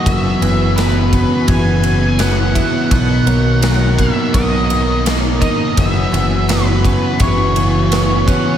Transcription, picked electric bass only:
X:1
M:4/4
L:1/8
Q:1/4=84
K:F#mix
V:1 name="Picked electric bass" clef=bass
F,,, F,,,3 F,,,4 | B,,, B,,,3 B,,,4 | F,,, F,,,3 F,,,4 |]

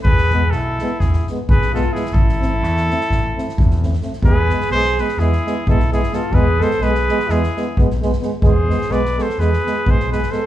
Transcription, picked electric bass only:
X:1
M:9/8
L:1/8
Q:3/8=86
K:Ephr
V:1 name="Picked electric bass" clef=bass
E,,,2 B,,,2 E,,, z B,,,3 | A,,,2 E,,2 A,,, z E,,3 | E,,2 B,,,2 E,, z B,,,3 | E,,2 B,,,2 E,, z B,,,3 |
E,,2 B,,,2 E,, z B,,,3 |]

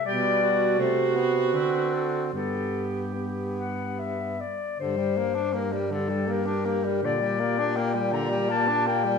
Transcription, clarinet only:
X:1
M:3/4
L:1/8
Q:1/4=80
K:G
V:1 name="Clarinet"
d2 c2 B A | A z G f e d | [K:Gm] c2 B A B2 | d2 g b a g |]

